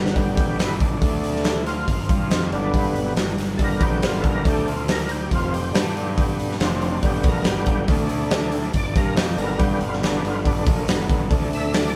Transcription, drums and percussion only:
0.06 snare medium
0.16 kick medium
0.16 open hi-hat medium
0.37 kick loud
0.37 open hi-hat medium
0.59 snare loud
0.59 open hi-hat medium
0.80 kick loud
0.80 open hi-hat medium
1.02 kick loud
1.02 open hi-hat medium
1.24 open hi-hat medium
1.36 snare soft
1.44 snare loud
1.44 open hi-hat medium
1.66 snare soft
1.66 open hi-hat medium
1.88 kick medium
1.88 open hi-hat medium
2.09 kick loud
2.09 open hi-hat medium
2.31 snare loud
2.31 open hi-hat medium
2.52 open hi-hat medium
2.74 kick loud
2.74 open hi-hat medium
2.96 open hi-hat medium
3.16 snare loud
3.16 open hi-hat medium
3.38 snare soft
3.38 open hi-hat medium
3.59 kick loud
3.59 open hi-hat medium
3.80 kick loud
3.80 open hi-hat medium
4.02 snare loud
4.02 open hi-hat medium
4.24 kick loud
4.24 open hi-hat medium
4.45 kick loud
4.45 open hi-hat medium
4.68 open hi-hat medium
4.88 snare loud
4.88 open hi-hat medium
5.09 open hi-hat medium
5.31 kick loud
5.31 open hi-hat medium
5.54 open hi-hat medium
5.75 snare loud
5.75 open hi-hat medium
5.97 open hi-hat medium
6.18 kick loud
6.18 open hi-hat medium
6.40 open hi-hat medium
6.51 snare soft
6.60 snare loud
6.60 open hi-hat medium
6.82 open hi-hat medium
7.03 kick loud
7.03 open hi-hat medium
7.23 kick loud
7.23 open hi-hat medium
7.44 snare loud
7.44 open hi-hat medium
7.66 kick loud
7.66 open hi-hat medium
7.88 kick loud
7.88 open hi-hat medium
8.09 open hi-hat medium
8.31 snare loud
8.31 open hi-hat medium
8.52 open hi-hat medium
8.73 kick medium
8.73 open hi-hat medium
8.96 kick loud
8.96 open hi-hat medium
9.17 snare loud
9.17 open hi-hat medium
9.38 open hi-hat medium
9.59 kick loud
9.59 open hi-hat medium
9.81 open hi-hat medium
9.93 snare soft
10.03 snare loud
10.03 open hi-hat medium
10.25 open hi-hat medium
10.45 kick loud
10.45 open hi-hat medium
10.67 kick loud
10.67 open hi-hat medium
10.88 snare loud
10.88 open hi-hat medium
11.10 kick loud
11.10 open hi-hat medium
11.31 kick loud
11.31 open hi-hat medium
11.53 open hi-hat medium
11.74 snare loud
11.74 open hi-hat medium

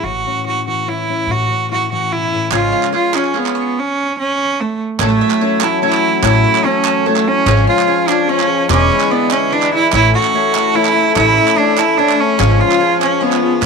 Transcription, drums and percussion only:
2.52 clap loud
2.83 clap medium
2.95 clap soft
3.14 clap medium
3.25 clap soft
3.35 clap soft
3.46 clap medium
5.00 clap loud
5.10 clap soft
5.30 clap medium
5.61 clap loud
5.93 clap medium
6.24 clap loud
6.55 clap medium
6.85 clap loud
7.16 clap medium
7.47 clap loud
7.58 clap soft
7.79 clap medium
8.09 clap medium
8.40 clap medium
8.70 clap loud
8.80 clap soft
8.91 clap soft
9.00 clap medium
9.31 clap loud
9.52 clap soft
9.62 clap medium
9.93 clap loud
10.03 clap soft
10.23 clap medium
10.55 clap loud
10.85 clap medium
11.16 clap loud
11.27 clap soft
11.48 clap medium
11.78 clap loud
12.09 clap medium
12.40 clap loud
12.51 clap soft
12.72 clap medium
13.02 clap medium
13.32 clap medium

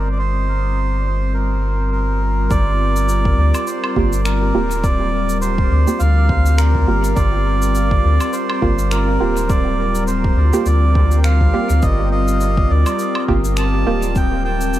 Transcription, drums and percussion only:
2.51 kick loud
2.51 cabasa soft
2.96 cabasa medium
3.09 cabasa soft
3.25 kick loud
3.55 cabasa medium
3.55 low woodblock medium
3.67 cabasa soft
3.84 low woodblock medium
3.96 kick medium
4.13 cabasa medium
4.25 finger snap medium
4.25 cabasa soft
4.71 cabasa medium
4.84 kick loud
4.84 cabasa soft
5.29 cabasa medium
5.42 cabasa soft
5.58 kick loud
5.88 cabasa medium
6.00 cabasa soft
6.29 kick loud
6.46 cabasa medium
6.58 finger snap medium
6.58 cabasa soft
6.75 kick medium
7.04 cabasa medium
7.17 kick loud
7.17 cabasa soft
7.62 cabasa medium
7.75 cabasa soft
7.91 kick loud
8.21 cabasa medium
8.21 low woodblock medium
8.33 cabasa soft
8.50 low woodblock medium
8.62 kick medium
8.79 cabasa medium
8.91 finger snap loud
8.91 cabasa soft
9.37 cabasa medium
9.49 kick loud
9.49 cabasa soft
9.95 cabasa soft
10.08 cabasa soft
10.24 kick loud
10.53 cabasa medium
10.66 cabasa soft
10.95 kick loud
11.11 cabasa medium
11.24 finger snap medium
11.24 cabasa soft
11.41 kick medium
11.70 cabasa medium
11.82 kick loud
11.82 cabasa soft
12.28 cabasa soft
12.41 cabasa soft
12.57 kick loud
12.86 cabasa soft
12.86 low woodblock medium
12.99 cabasa soft
13.15 low woodblock medium
13.28 kick medium
13.44 cabasa soft
13.57 finger snap medium
13.57 cabasa soft
14.03 cabasa soft
14.16 kick loud
14.16 cabasa soft
14.61 cabasa soft
14.74 cabasa soft

